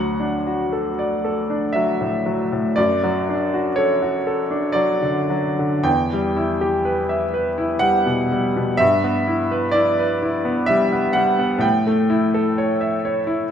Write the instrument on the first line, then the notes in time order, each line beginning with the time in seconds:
grand piano
Already playing: D2 F#3 F#5
0.20 D4
0.47 F#4
0.73 A4
0.99 D5
1.25 A4
1.50 D4
1.73 F#3 E5
2.01 A2
2.26 F#3
2.52 A2
2.76 F#2 D5
3.04 F#3
3.29 D4
3.54 F#4
3.76 A4 C#5
4.02 F#4
4.27 A4
4.50 D4
4.72 F#3 D5
5.02 D3
5.30 F#3
5.59 D3
5.83 E2 G5
6.13 G3
6.37 E4
6.61 G4
6.85 B4
7.09 E5
7.34 B4
7.58 E4
7.79 G3 F#5
8.06 B2
8.32 G3
8.56 B2
8.77 G2 E5
9.04 B3
9.27 E4
9.51 B4
9.71 E4 D5
9.99 B4
10.23 E4
10.45 B3
10.66 G3 E5
10.93 B3
11.13 G3 F#5
11.39 B3
11.58 A2 G5
11.87 A3
12.10 E4
12.34 A4
12.58 C#5
12.81 E5
13.05 C#5
13.27 E4